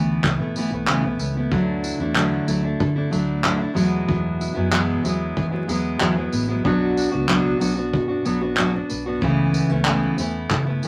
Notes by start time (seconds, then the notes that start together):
Already playing: D2 E3 A3 B3 C#4 E4 A4
0.24 C#2 A4, kick, clap
0.39 B2 A3 B3 E4
0.56 E3 A3 B3 E4, tambourine
0.71 B1 A3 B3 E4
0.87 C#3 E3 A3 B3 C#4 E4, clap
1.04 B1 A3 B3 E4
1.19 C#2 B3, tambourine
1.37 A3 B3 E4
1.52 D2 D3 F#3 A3 D4 E4, kick
1.84 E4, tambourine
1.99 E2 A3 D4 E4
2.15 D3 F#3 A3 D4 E4 A4, clap
2.47 D2 F#3 A3 D4 E4, tambourine
2.63 A3 D4 E4
2.80 D3 A4, kick
2.96 A3 D4 E4
3.11 D2 F#3 A3 D4 E4, tambourine
3.44 D3 F#3 A3 D4 E4, clap
3.60 A3 D4 E4
3.74 E2 B2 F#3 G#3 B3 E4, tambourine
4.08 E2 F#3, kick
4.41 E4, tambourine
4.54 F#2 F#3 G#3 B3 E4
4.70 E2 B2 F#3 G#3 B3 E4 G#4, clap
5.03 E2 F#3 G#3 B3 E4, tambourine
5.37 E3 G#4, kick
5.51 F#3 G#3 B3 E4
5.67 E2 F#3 G#3 B3 E4, tambourine
5.99 E2 B2 F#3 G#3 B3 E4, clap
6.16 F#3 G#3 B3 E4
6.33 A1 B3, tambourine
6.48 F#3 G#3 B3 E4
6.64 B1 B2 F#3 B3 D4 F#4, kick
6.97 D4, tambourine
7.12 C#2 B3 D4 F#4
7.27 B2 F#3 B3 D4 F#4, clap
7.59 B1 F#3 B3 D4 F#4, tambourine
7.76 B3 D4 F#4
7.93 B2 F#4, kick
8.08 B3 D4 F#4
8.25 B1 F#3 B3 D4 F#4, tambourine
8.41 B3 D4 F#4
8.57 B2 F#3 B3 D4 F#4, clap
8.74 B3 D4 F#4
8.89 B1 B3, tambourine
9.06 B3 D4 F#4
9.21 C#2 C#3 E3 A3 B3 E4, kick
9.54 B3, tambourine
9.69 C#2 A3 B3 C#4 E4
9.85 C#3 E3 A3 B3 E4 A4, clap
10.18 E2 E3 A3 B3 E4, tambourine
10.50 C#3 A4, kick, clap
10.66 A3 B3 E4
10.82 B2 E3 A3 B3, tambourine